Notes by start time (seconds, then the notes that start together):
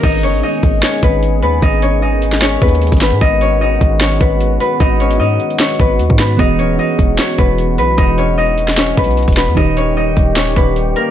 Already playing: A#3 C#4 A#4 C#5
0.03 G#1 D#3 G#3 B3 D#4 G#4 D#5, kick, closed hi-hat, crash
0.23 F#1 C#4 C#5, closed hi-hat
0.34 G#1
0.43 D#4 D#5
0.63 G#1, kick, closed hi-hat
0.83 C#4 C#5, snare, closed hi-hat
0.88 closed hi-hat
0.93 closed hi-hat
0.98 closed hi-hat
1.03 G#1 B3 B4, kick, closed hi-hat
1.23 closed hi-hat
1.42 D#2 B3 B4, closed hi-hat
1.62 G#1 D#4 D#5, kick, closed hi-hat
1.82 C#4 C#5, closed hi-hat
2.02 D#4 D#5
2.22 closed hi-hat
2.33 snare
2.42 C#4 C#5, snare, closed hi-hat
2.61 D#2 B3 B4, kick, closed hi-hat
2.68 closed hi-hat
2.75 closed hi-hat
2.82 closed hi-hat
2.87 closed hi-hat
2.92 G#1, kick, closed hi-hat
2.97 closed hi-hat
3.01 B3 B4, snare, closed hi-hat
3.12 G#2
3.21 G#1 D#4 F#4 D#5, kick, closed hi-hat
3.41 C#4 C#5, closed hi-hat
3.61 D#4 D#5
3.81 G#1, kick, closed hi-hat
4.01 C#4 C#5, snare, closed hi-hat
4.06 closed hi-hat
4.11 closed hi-hat
4.16 closed hi-hat
4.21 G#1 B3 B4, kick, closed hi-hat
4.41 closed hi-hat
4.60 B3 B4, closed hi-hat
4.80 G#1 D#4 D#5, kick, closed hi-hat
5.00 C#4 C#5, closed hi-hat
5.11 closed hi-hat
5.20 G#2 D#4 D#5
5.40 closed hi-hat
5.50 closed hi-hat
5.60 C#4 C#5, snare, closed hi-hat
5.65 closed hi-hat
5.70 closed hi-hat
5.75 closed hi-hat
5.80 G#1 B3 B4, kick, closed hi-hat
5.99 D#2, closed hi-hat
6.10 G#2, kick
6.19 B3 B4, snare, open hi-hat
6.37 E1 E3 G#3 B3 D#4 F#4 D#5, kick, closed hi-hat
6.41 G#4
6.59 D#1 C#4 C#5, closed hi-hat
6.70 E1
6.79 D#4 D#5
6.99 E1, kick, closed hi-hat
7.19 C#4 C#5, snare, closed hi-hat
7.24 closed hi-hat
7.29 closed hi-hat
7.34 closed hi-hat
7.38 E1 B3 B4, kick, closed hi-hat
7.58 closed hi-hat
7.78 B1 B3 B4, closed hi-hat
7.98 E1 D#4 D#5, kick, closed hi-hat
8.18 C#4 C#5, closed hi-hat
8.38 D#4 D#5
8.58 closed hi-hat
8.68 snare
8.77 C#4 C#5, snare, closed hi-hat
8.97 B1 B3 B4, kick, closed hi-hat
9.04 closed hi-hat
9.11 closed hi-hat
9.17 closed hi-hat
9.23 closed hi-hat
9.28 E1, kick, closed hi-hat
9.33 closed hi-hat
9.37 B3 B4, snare, closed hi-hat
9.48 E2
9.55 D#1 D#3 G3 D#4 G4 D#5, kick, closed hi-hat
9.77 C#4 C#5, closed hi-hat
9.97 D#4 D#5
10.17 D#1, kick, closed hi-hat
10.36 C#4 C#5, snare, closed hi-hat
10.42 closed hi-hat
10.47 closed hi-hat
10.52 closed hi-hat
10.56 D#1 B3 B4, kick, closed hi-hat
10.76 closed hi-hat
10.96 A#3 A#4, closed hi-hat